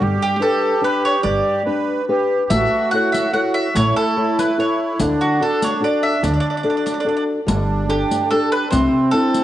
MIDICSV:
0, 0, Header, 1, 6, 480
1, 0, Start_track
1, 0, Key_signature, 2, "major"
1, 0, Tempo, 414079
1, 15, Time_signature, 3, 2, 24, 8
1, 10942, End_track
2, 0, Start_track
2, 0, Title_t, "Mandolin"
2, 0, Program_c, 0, 25
2, 260, Note_on_c, 0, 67, 78
2, 471, Note_off_c, 0, 67, 0
2, 488, Note_on_c, 0, 69, 78
2, 930, Note_off_c, 0, 69, 0
2, 979, Note_on_c, 0, 71, 78
2, 1204, Note_off_c, 0, 71, 0
2, 1219, Note_on_c, 0, 73, 82
2, 1426, Note_off_c, 0, 73, 0
2, 1430, Note_on_c, 0, 74, 78
2, 1888, Note_off_c, 0, 74, 0
2, 2899, Note_on_c, 0, 76, 74
2, 3370, Note_off_c, 0, 76, 0
2, 3375, Note_on_c, 0, 78, 82
2, 3614, Note_off_c, 0, 78, 0
2, 3619, Note_on_c, 0, 76, 71
2, 3842, Note_off_c, 0, 76, 0
2, 3866, Note_on_c, 0, 78, 73
2, 4101, Note_off_c, 0, 78, 0
2, 4106, Note_on_c, 0, 76, 86
2, 4326, Note_off_c, 0, 76, 0
2, 4353, Note_on_c, 0, 73, 77
2, 4591, Note_off_c, 0, 73, 0
2, 4596, Note_on_c, 0, 69, 87
2, 5084, Note_off_c, 0, 69, 0
2, 5089, Note_on_c, 0, 71, 68
2, 5297, Note_off_c, 0, 71, 0
2, 5330, Note_on_c, 0, 73, 71
2, 5763, Note_off_c, 0, 73, 0
2, 6040, Note_on_c, 0, 66, 72
2, 6272, Note_off_c, 0, 66, 0
2, 6289, Note_on_c, 0, 69, 77
2, 6508, Note_off_c, 0, 69, 0
2, 6539, Note_on_c, 0, 73, 59
2, 6739, Note_off_c, 0, 73, 0
2, 6771, Note_on_c, 0, 74, 72
2, 6989, Note_off_c, 0, 74, 0
2, 6990, Note_on_c, 0, 76, 79
2, 7202, Note_off_c, 0, 76, 0
2, 7244, Note_on_c, 0, 74, 59
2, 7317, Note_off_c, 0, 74, 0
2, 7343, Note_on_c, 0, 74, 46
2, 7407, Note_off_c, 0, 74, 0
2, 7421, Note_on_c, 0, 74, 72
2, 7494, Note_off_c, 0, 74, 0
2, 7535, Note_on_c, 0, 74, 46
2, 7591, Note_off_c, 0, 74, 0
2, 7618, Note_on_c, 0, 74, 53
2, 7675, Note_off_c, 0, 74, 0
2, 7688, Note_on_c, 0, 74, 45
2, 7750, Note_off_c, 0, 74, 0
2, 7764, Note_on_c, 0, 74, 50
2, 7833, Note_off_c, 0, 74, 0
2, 7847, Note_on_c, 0, 74, 43
2, 7928, Note_off_c, 0, 74, 0
2, 7951, Note_on_c, 0, 74, 55
2, 8021, Note_off_c, 0, 74, 0
2, 8043, Note_on_c, 0, 74, 37
2, 8103, Note_off_c, 0, 74, 0
2, 8117, Note_on_c, 0, 74, 61
2, 8189, Note_off_c, 0, 74, 0
2, 8214, Note_on_c, 0, 74, 47
2, 8288, Note_off_c, 0, 74, 0
2, 8307, Note_on_c, 0, 74, 53
2, 8381, Note_off_c, 0, 74, 0
2, 9153, Note_on_c, 0, 67, 82
2, 9601, Note_off_c, 0, 67, 0
2, 9627, Note_on_c, 0, 69, 85
2, 9870, Note_off_c, 0, 69, 0
2, 9875, Note_on_c, 0, 71, 91
2, 10085, Note_off_c, 0, 71, 0
2, 10090, Note_on_c, 0, 72, 77
2, 10559, Note_off_c, 0, 72, 0
2, 10563, Note_on_c, 0, 69, 90
2, 10942, Note_off_c, 0, 69, 0
2, 10942, End_track
3, 0, Start_track
3, 0, Title_t, "Accordion"
3, 0, Program_c, 1, 21
3, 22, Note_on_c, 1, 67, 97
3, 1886, Note_off_c, 1, 67, 0
3, 1923, Note_on_c, 1, 71, 94
3, 2380, Note_off_c, 1, 71, 0
3, 2422, Note_on_c, 1, 67, 86
3, 2831, Note_off_c, 1, 67, 0
3, 2848, Note_on_c, 1, 67, 66
3, 2916, Note_off_c, 1, 67, 0
3, 2927, Note_on_c, 1, 66, 90
3, 4360, Note_on_c, 1, 64, 88
3, 4405, Note_off_c, 1, 66, 0
3, 5791, Note_on_c, 1, 62, 92
3, 5832, Note_off_c, 1, 64, 0
3, 8394, Note_off_c, 1, 62, 0
3, 8671, Note_on_c, 1, 62, 79
3, 10088, Note_on_c, 1, 60, 88
3, 10154, Note_off_c, 1, 62, 0
3, 10942, Note_off_c, 1, 60, 0
3, 10942, End_track
4, 0, Start_track
4, 0, Title_t, "Nylon-string guitar"
4, 0, Program_c, 2, 24
4, 3, Note_on_c, 2, 55, 81
4, 455, Note_off_c, 2, 55, 0
4, 459, Note_on_c, 2, 62, 43
4, 466, Note_on_c, 2, 67, 45
4, 472, Note_on_c, 2, 71, 52
4, 852, Note_off_c, 2, 62, 0
4, 852, Note_off_c, 2, 67, 0
4, 859, Note_off_c, 2, 71, 0
4, 944, Note_on_c, 2, 62, 44
4, 946, Note_on_c, 2, 67, 37
4, 952, Note_on_c, 2, 71, 49
4, 1335, Note_off_c, 2, 67, 0
4, 1335, Note_off_c, 2, 71, 0
4, 1336, Note_off_c, 2, 62, 0
4, 1429, Note_on_c, 2, 55, 60
4, 1907, Note_off_c, 2, 55, 0
4, 1929, Note_on_c, 2, 62, 49
4, 1935, Note_on_c, 2, 67, 41
4, 1940, Note_on_c, 2, 71, 42
4, 2320, Note_off_c, 2, 62, 0
4, 2324, Note_off_c, 2, 67, 0
4, 2325, Note_off_c, 2, 71, 0
4, 2420, Note_on_c, 2, 62, 41
4, 2420, Note_on_c, 2, 67, 44
4, 2426, Note_on_c, 2, 71, 53
4, 2807, Note_off_c, 2, 67, 0
4, 2809, Note_off_c, 2, 62, 0
4, 2812, Note_off_c, 2, 71, 0
4, 2905, Note_on_c, 2, 57, 66
4, 3375, Note_off_c, 2, 57, 0
4, 3397, Note_on_c, 2, 64, 44
4, 3407, Note_on_c, 2, 69, 43
4, 3412, Note_on_c, 2, 73, 49
4, 3781, Note_off_c, 2, 64, 0
4, 3783, Note_off_c, 2, 69, 0
4, 3783, Note_off_c, 2, 73, 0
4, 3859, Note_on_c, 2, 64, 45
4, 3870, Note_on_c, 2, 69, 42
4, 3876, Note_on_c, 2, 73, 49
4, 4248, Note_off_c, 2, 64, 0
4, 4254, Note_off_c, 2, 69, 0
4, 4257, Note_off_c, 2, 73, 0
4, 4343, Note_on_c, 2, 57, 68
4, 4812, Note_off_c, 2, 57, 0
4, 4832, Note_on_c, 2, 64, 44
4, 4833, Note_on_c, 2, 69, 45
4, 4835, Note_on_c, 2, 73, 49
4, 5214, Note_off_c, 2, 64, 0
4, 5214, Note_off_c, 2, 69, 0
4, 5214, Note_off_c, 2, 73, 0
4, 5308, Note_on_c, 2, 64, 40
4, 5312, Note_on_c, 2, 69, 37
4, 5321, Note_on_c, 2, 73, 44
4, 5689, Note_off_c, 2, 64, 0
4, 5693, Note_off_c, 2, 69, 0
4, 5695, Note_off_c, 2, 73, 0
4, 5796, Note_on_c, 2, 50, 73
4, 6254, Note_off_c, 2, 50, 0
4, 6265, Note_on_c, 2, 62, 47
4, 6269, Note_on_c, 2, 66, 43
4, 6278, Note_on_c, 2, 69, 54
4, 6647, Note_off_c, 2, 62, 0
4, 6650, Note_off_c, 2, 66, 0
4, 6653, Note_off_c, 2, 69, 0
4, 6727, Note_on_c, 2, 62, 41
4, 6736, Note_on_c, 2, 66, 40
4, 6747, Note_on_c, 2, 69, 45
4, 7116, Note_off_c, 2, 62, 0
4, 7117, Note_off_c, 2, 66, 0
4, 7127, Note_off_c, 2, 69, 0
4, 7221, Note_on_c, 2, 50, 71
4, 7684, Note_off_c, 2, 50, 0
4, 7693, Note_on_c, 2, 62, 41
4, 7700, Note_on_c, 2, 69, 45
4, 7701, Note_on_c, 2, 66, 42
4, 8084, Note_off_c, 2, 62, 0
4, 8087, Note_off_c, 2, 66, 0
4, 8087, Note_off_c, 2, 69, 0
4, 8166, Note_on_c, 2, 62, 41
4, 8172, Note_on_c, 2, 66, 38
4, 8180, Note_on_c, 2, 69, 40
4, 8562, Note_off_c, 2, 62, 0
4, 8566, Note_off_c, 2, 66, 0
4, 8568, Note_off_c, 2, 69, 0
4, 8654, Note_on_c, 2, 55, 71
4, 9131, Note_off_c, 2, 55, 0
4, 9144, Note_on_c, 2, 67, 45
4, 9146, Note_on_c, 2, 62, 47
4, 9147, Note_on_c, 2, 69, 48
4, 9532, Note_off_c, 2, 67, 0
4, 9532, Note_off_c, 2, 69, 0
4, 9535, Note_off_c, 2, 62, 0
4, 9634, Note_on_c, 2, 62, 44
4, 9640, Note_on_c, 2, 67, 42
4, 9644, Note_on_c, 2, 69, 50
4, 10016, Note_off_c, 2, 62, 0
4, 10017, Note_off_c, 2, 67, 0
4, 10021, Note_off_c, 2, 69, 0
4, 10103, Note_on_c, 2, 48, 74
4, 10567, Note_off_c, 2, 48, 0
4, 10577, Note_on_c, 2, 60, 51
4, 10581, Note_on_c, 2, 62, 42
4, 10594, Note_on_c, 2, 64, 46
4, 10942, Note_off_c, 2, 60, 0
4, 10942, Note_off_c, 2, 62, 0
4, 10942, Note_off_c, 2, 64, 0
4, 10942, End_track
5, 0, Start_track
5, 0, Title_t, "Upright bass"
5, 0, Program_c, 3, 32
5, 19, Note_on_c, 3, 31, 85
5, 178, Note_off_c, 3, 31, 0
5, 1441, Note_on_c, 3, 31, 82
5, 1606, Note_off_c, 3, 31, 0
5, 2901, Note_on_c, 3, 33, 92
5, 3067, Note_off_c, 3, 33, 0
5, 4362, Note_on_c, 3, 33, 102
5, 4521, Note_off_c, 3, 33, 0
5, 5795, Note_on_c, 3, 38, 94
5, 5954, Note_off_c, 3, 38, 0
5, 7223, Note_on_c, 3, 38, 98
5, 7384, Note_off_c, 3, 38, 0
5, 8669, Note_on_c, 3, 31, 89
5, 9297, Note_off_c, 3, 31, 0
5, 10116, Note_on_c, 3, 36, 98
5, 10275, Note_off_c, 3, 36, 0
5, 10942, End_track
6, 0, Start_track
6, 0, Title_t, "Riq"
6, 2903, Note_on_c, 9, 54, 59
6, 3019, Note_off_c, 9, 54, 0
6, 3644, Note_on_c, 9, 54, 47
6, 3760, Note_off_c, 9, 54, 0
6, 4357, Note_on_c, 9, 54, 49
6, 4473, Note_off_c, 9, 54, 0
6, 5088, Note_on_c, 9, 54, 47
6, 5204, Note_off_c, 9, 54, 0
6, 5790, Note_on_c, 9, 54, 65
6, 5906, Note_off_c, 9, 54, 0
6, 6519, Note_on_c, 9, 54, 55
6, 6635, Note_off_c, 9, 54, 0
6, 7230, Note_on_c, 9, 54, 51
6, 7346, Note_off_c, 9, 54, 0
6, 7958, Note_on_c, 9, 54, 37
6, 8074, Note_off_c, 9, 54, 0
6, 8673, Note_on_c, 9, 54, 69
6, 8789, Note_off_c, 9, 54, 0
6, 9404, Note_on_c, 9, 54, 48
6, 9520, Note_off_c, 9, 54, 0
6, 10112, Note_on_c, 9, 54, 61
6, 10228, Note_off_c, 9, 54, 0
6, 10830, Note_on_c, 9, 54, 43
6, 10942, Note_off_c, 9, 54, 0
6, 10942, End_track
0, 0, End_of_file